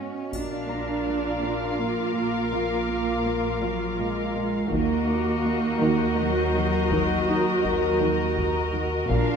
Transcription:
0.00 0.18 G#2 soft
0.00 0.33 B3 soft
0.00 0.33 C#4 soft
0.00 0.29 F#4 soft
0.00 0.29 D#5 soft
0.00 0.36 F#5 soft
0.33 4.68 A#1 soft
0.33 0.55 A#2 soft
0.33 1.80 D4 medium
0.33 4.68 F4 soft
0.33 4.68 A#4 soft
0.33 4.68 F5 soft
0.33 4.69 F5 soft
0.33 4.32 F6 soft
0.33 taiko soft
0.33 triangle soft
0.69 0.92 A#3 soft
0.69 4.59 A#5 soft
1.06 1.28 A#3 soft
1.06 4.32 D6 soft
1.43 1.65 A#2 medium
1.79 2.01 A#2 soft
1.79 2.52 A#3 medium
2.16 2.38 A#2 soft
2.53 2.75 A#2 medium
2.53 3.60 A#3 medium
2.53 4.75 F6 soft
2.89 3.11 A#3 soft
3.26 3.48 A#3 soft
3.62 3.84 A#2 medium
3.62 3.99 F#3 medium
3.99 4.21 A#2 soft
3.99 4.72 G#3 medium
4.35 4.57 A#2 soft
4.72 9.11 D#2 medium
4.72 4.94 D#3 medium
4.72 6.16 A#3 medium
4.72 9.11 F#4 soft
4.72 9.11 F#4 medium
4.72 9.07 A#4 soft
4.72 9.07 A#4 medium
4.72 9.11 D#5 medium
4.72 9.11 A#5 soft
4.72 8.71 F#6 soft
4.72 6.62 C#7 soft
4.72 taiko medium
5.08 5.30 D#4 soft
5.08 9.00 D6 soft
5.45 5.67 D#4 soft
5.45 8.71 G6 soft
5.81 6.04 D#3 medium
6.18 6.40 D#3 soft
6.18 6.91 F#3 medium
6.55 6.77 D#3 soft
6.62 7.25 C7 soft
6.91 7.13 D#3 medium
6.91 7.99 F#3 medium
6.91 taiko medium
7.28 7.50 D#4 medium
7.28 9.36 D#6 soft
7.64 7.86 D#4 medium
7.64 taiko medium
8.01 8.23 D#3 medium
8.38 8.60 D#3 soft
8.38 taiko medium
8.74 8.96 D#3 medium
9.10 9.36 A#1 medium
9.10 9.33 A#2 medium
9.10 9.36 D4 medium
9.10 9.36 F4 soft
9.10 9.36 F4 medium
9.10 9.36 A#4 soft
9.10 9.36 A#4 medium
9.10 9.36 F5 soft
9.10 9.36 F5 medium
9.10 9.36 F6 medium
9.10 taiko medium

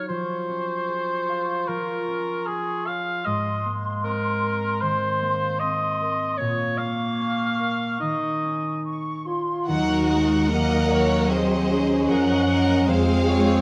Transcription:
0.00 0.13 D#3 soft
0.00 0.13 F#3 soft
0.00 0.11 D#4 soft
0.00 0.13 D#4 soft
0.00 3.21 F4 soft
0.00 0.13 F#4 soft
0.09 1.67 F3 soft
0.09 3.25 F4 medium
0.09 1.70 C5 medium
0.09 2.97 C#6 soft
0.49 2.07 C#4 soft
0.88 2.47 G#4 soft
1.29 3.29 F5 soft
1.68 3.29 F3 soft
1.68 2.48 A#4 medium
2.08 3.29 C#4 soft
2.47 2.88 G#4 medium
2.47 6.38 G#4 soft
2.87 3.29 C#5 soft
2.87 3.27 F5 medium
3.25 6.42 G#2 medium
3.25 6.08 G#3 medium
3.25 3.76 D#5 medium
3.25 6.35 C6 medium
3.65 5.21 A#3 soft
4.04 5.60 C4 soft
4.04 4.83 A#4 medium
4.43 6.00 A#4 soft
4.81 6.42 D#3 soft
4.81 5.61 C5 medium
5.22 6.78 A#3 soft
5.60 6.42 C4 soft
5.60 6.39 D#5 medium
6.01 7.58 A#4 soft
6.37 8.05 A#2 medium
6.37 7.96 A#3 medium
6.37 6.79 C#5 medium
6.37 8.77 C#6 medium
6.78 9.87 A#3 soft
6.78 8.00 F5 medium
7.19 8.43 C#4 soft
7.60 10.49 A#4 soft
8.00 9.67 D#3 soft
8.00 9.31 D#4 medium
8.00 8.82 D#5 medium
8.44 9.72 C#4 soft
8.84 9.23 C#6 soft
9.26 9.65 F4 medium
9.26 9.72 C#5 soft
9.26 9.68 C6 soft
9.67 12.05 D#2 medium
9.67 12.91 D#3 medium
9.67 10.07 F#3 medium
9.67 10.50 D#4 medium
9.67 10.46 F#4 medium
9.67 10.46 A#4 soft
9.67 10.06 F#5 medium
9.89 12.67 A#3 soft
10.09 10.50 G#3 medium
10.09 12.48 D#4 soft
10.09 11.27 F#5 medium
10.49 12.09 F#3 medium
10.49 11.29 A#3 medium
10.49 11.30 A#4 medium
10.49 12.09 A#4 soft
10.49 10.90 D#5 medium
10.71 11.89 D#5 medium
10.89 11.29 C#5 medium
10.89 11.29 F#5 medium
11.11 11.49 A#5 medium
11.29 11.69 C4 medium
11.29 12.09 G#4 medium
11.29 12.09 C5 medium
11.29 12.09 D#5 medium
11.29 11.70 F#5 medium
11.50 12.91 A#5 medium
11.70 12.88 C#4 medium
11.70 12.91 F#5 soft
11.91 12.91 D#5 soft
12.08 12.87 F#2 medium
12.08 12.88 F3 medium
12.08 12.46 A#4 medium
12.08 12.91 A#4 medium
12.08 12.87 D#5 medium
12.08 12.88 F#5 medium
12.47 12.91 D#4 soft
12.47 12.86 A#4 medium
12.69 12.91 A#3 soft
12.87 13.61 F2 medium
12.87 13.61 F3 medium
12.87 13.61 G#3 medium
12.87 13.61 C4 loud
12.87 13.61 G#4 medium
12.87 13.27 C5 medium
12.87 13.61 F5 medium
13.09 13.61 G#3 medium
13.27 13.61 F4 soft
13.27 13.61 C#5 medium
13.48 13.61 G#4 soft

